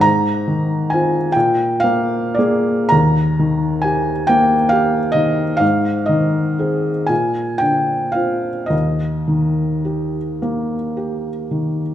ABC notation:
X:1
M:12/8
L:1/8
Q:3/8=40
K:Eb
V:1 name="Felt piano"
b2 a g f d b2 a g f e | f e2 a g f e3 z3 |]
V:2 name="Felt piano"
A,, E, [CF] B,, B, [B,A] E,, E, G B, G E, | A,, E, [CA] B,, D, [CF] E,, E, G B, G E, |]